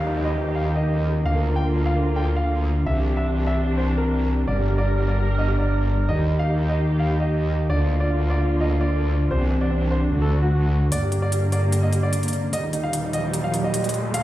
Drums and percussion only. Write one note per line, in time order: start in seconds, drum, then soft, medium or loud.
10.92 closed hi-hat medium
11.12 closed hi-hat medium
11.32 closed hi-hat medium
11.52 closed hi-hat medium
11.72 closed hi-hat medium
11.93 closed hi-hat medium
12.13 closed hi-hat medium
12.23 closed hi-hat soft
12.28 closed hi-hat medium
12.33 closed hi-hat soft
12.53 closed hi-hat medium
12.73 closed hi-hat soft
12.93 closed hi-hat medium
13.13 closed hi-hat medium
13.34 closed hi-hat medium
13.54 closed hi-hat medium
13.74 closed hi-hat medium
13.84 closed hi-hat soft
13.89 closed hi-hat medium
13.94 closed hi-hat soft
14.14 closed hi-hat medium